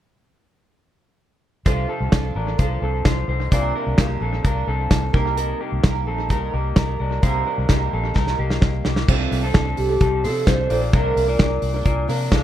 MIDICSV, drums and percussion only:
0, 0, Header, 1, 2, 480
1, 0, Start_track
1, 0, Tempo, 463679
1, 1719, Time_signature, 4, 2, 24, 8
1, 12872, End_track
2, 0, Start_track
2, 0, Title_t, "Drums"
2, 1718, Note_on_c, 9, 36, 91
2, 1718, Note_on_c, 9, 42, 60
2, 1821, Note_off_c, 9, 42, 0
2, 1822, Note_off_c, 9, 36, 0
2, 2196, Note_on_c, 9, 38, 84
2, 2198, Note_on_c, 9, 42, 66
2, 2201, Note_on_c, 9, 36, 85
2, 2299, Note_off_c, 9, 38, 0
2, 2302, Note_off_c, 9, 42, 0
2, 2305, Note_off_c, 9, 36, 0
2, 2679, Note_on_c, 9, 42, 55
2, 2682, Note_on_c, 9, 36, 83
2, 2783, Note_off_c, 9, 42, 0
2, 2786, Note_off_c, 9, 36, 0
2, 3158, Note_on_c, 9, 38, 92
2, 3158, Note_on_c, 9, 42, 72
2, 3162, Note_on_c, 9, 36, 100
2, 3262, Note_off_c, 9, 38, 0
2, 3262, Note_off_c, 9, 42, 0
2, 3266, Note_off_c, 9, 36, 0
2, 3643, Note_on_c, 9, 36, 94
2, 3643, Note_on_c, 9, 42, 64
2, 3746, Note_off_c, 9, 36, 0
2, 3747, Note_off_c, 9, 42, 0
2, 4118, Note_on_c, 9, 38, 95
2, 4120, Note_on_c, 9, 42, 76
2, 4124, Note_on_c, 9, 36, 83
2, 4222, Note_off_c, 9, 38, 0
2, 4224, Note_off_c, 9, 42, 0
2, 4228, Note_off_c, 9, 36, 0
2, 4601, Note_on_c, 9, 42, 60
2, 4603, Note_on_c, 9, 36, 84
2, 4705, Note_off_c, 9, 42, 0
2, 4706, Note_off_c, 9, 36, 0
2, 5080, Note_on_c, 9, 42, 76
2, 5081, Note_on_c, 9, 38, 94
2, 5082, Note_on_c, 9, 36, 95
2, 5184, Note_off_c, 9, 38, 0
2, 5184, Note_off_c, 9, 42, 0
2, 5186, Note_off_c, 9, 36, 0
2, 5322, Note_on_c, 9, 36, 90
2, 5425, Note_off_c, 9, 36, 0
2, 5564, Note_on_c, 9, 42, 65
2, 5667, Note_off_c, 9, 42, 0
2, 6041, Note_on_c, 9, 38, 94
2, 6043, Note_on_c, 9, 42, 69
2, 6046, Note_on_c, 9, 36, 91
2, 6144, Note_off_c, 9, 38, 0
2, 6146, Note_off_c, 9, 42, 0
2, 6149, Note_off_c, 9, 36, 0
2, 6523, Note_on_c, 9, 42, 56
2, 6524, Note_on_c, 9, 36, 82
2, 6626, Note_off_c, 9, 42, 0
2, 6627, Note_off_c, 9, 36, 0
2, 6998, Note_on_c, 9, 42, 72
2, 6999, Note_on_c, 9, 38, 95
2, 7004, Note_on_c, 9, 36, 98
2, 7102, Note_off_c, 9, 38, 0
2, 7102, Note_off_c, 9, 42, 0
2, 7107, Note_off_c, 9, 36, 0
2, 7485, Note_on_c, 9, 36, 99
2, 7485, Note_on_c, 9, 42, 59
2, 7588, Note_off_c, 9, 42, 0
2, 7589, Note_off_c, 9, 36, 0
2, 7959, Note_on_c, 9, 38, 92
2, 7961, Note_on_c, 9, 42, 73
2, 7967, Note_on_c, 9, 36, 98
2, 8062, Note_off_c, 9, 38, 0
2, 8065, Note_off_c, 9, 42, 0
2, 8070, Note_off_c, 9, 36, 0
2, 8444, Note_on_c, 9, 38, 41
2, 8446, Note_on_c, 9, 36, 85
2, 8547, Note_off_c, 9, 38, 0
2, 8549, Note_off_c, 9, 36, 0
2, 8563, Note_on_c, 9, 38, 43
2, 8666, Note_off_c, 9, 38, 0
2, 8803, Note_on_c, 9, 38, 55
2, 8907, Note_off_c, 9, 38, 0
2, 8920, Note_on_c, 9, 38, 71
2, 8925, Note_on_c, 9, 36, 100
2, 9024, Note_off_c, 9, 38, 0
2, 9028, Note_off_c, 9, 36, 0
2, 9159, Note_on_c, 9, 38, 68
2, 9263, Note_off_c, 9, 38, 0
2, 9279, Note_on_c, 9, 38, 68
2, 9382, Note_off_c, 9, 38, 0
2, 9404, Note_on_c, 9, 49, 83
2, 9405, Note_on_c, 9, 36, 102
2, 9507, Note_off_c, 9, 49, 0
2, 9508, Note_off_c, 9, 36, 0
2, 9651, Note_on_c, 9, 46, 60
2, 9754, Note_off_c, 9, 46, 0
2, 9879, Note_on_c, 9, 38, 95
2, 9881, Note_on_c, 9, 42, 76
2, 9885, Note_on_c, 9, 36, 91
2, 9983, Note_off_c, 9, 38, 0
2, 9985, Note_off_c, 9, 42, 0
2, 9989, Note_off_c, 9, 36, 0
2, 10116, Note_on_c, 9, 46, 52
2, 10220, Note_off_c, 9, 46, 0
2, 10359, Note_on_c, 9, 42, 61
2, 10361, Note_on_c, 9, 36, 93
2, 10462, Note_off_c, 9, 42, 0
2, 10465, Note_off_c, 9, 36, 0
2, 10606, Note_on_c, 9, 46, 73
2, 10710, Note_off_c, 9, 46, 0
2, 10838, Note_on_c, 9, 38, 100
2, 10838, Note_on_c, 9, 42, 80
2, 10840, Note_on_c, 9, 36, 100
2, 10941, Note_off_c, 9, 42, 0
2, 10942, Note_off_c, 9, 38, 0
2, 10944, Note_off_c, 9, 36, 0
2, 11078, Note_on_c, 9, 46, 57
2, 11182, Note_off_c, 9, 46, 0
2, 11319, Note_on_c, 9, 36, 101
2, 11319, Note_on_c, 9, 42, 65
2, 11422, Note_off_c, 9, 42, 0
2, 11423, Note_off_c, 9, 36, 0
2, 11565, Note_on_c, 9, 46, 58
2, 11669, Note_off_c, 9, 46, 0
2, 11794, Note_on_c, 9, 38, 101
2, 11796, Note_on_c, 9, 42, 76
2, 11799, Note_on_c, 9, 36, 86
2, 11897, Note_off_c, 9, 38, 0
2, 11900, Note_off_c, 9, 42, 0
2, 11902, Note_off_c, 9, 36, 0
2, 12029, Note_on_c, 9, 46, 57
2, 12133, Note_off_c, 9, 46, 0
2, 12272, Note_on_c, 9, 42, 62
2, 12274, Note_on_c, 9, 36, 88
2, 12375, Note_off_c, 9, 42, 0
2, 12377, Note_off_c, 9, 36, 0
2, 12520, Note_on_c, 9, 46, 77
2, 12624, Note_off_c, 9, 46, 0
2, 12750, Note_on_c, 9, 42, 84
2, 12751, Note_on_c, 9, 38, 101
2, 12753, Note_on_c, 9, 36, 97
2, 12854, Note_off_c, 9, 38, 0
2, 12854, Note_off_c, 9, 42, 0
2, 12857, Note_off_c, 9, 36, 0
2, 12872, End_track
0, 0, End_of_file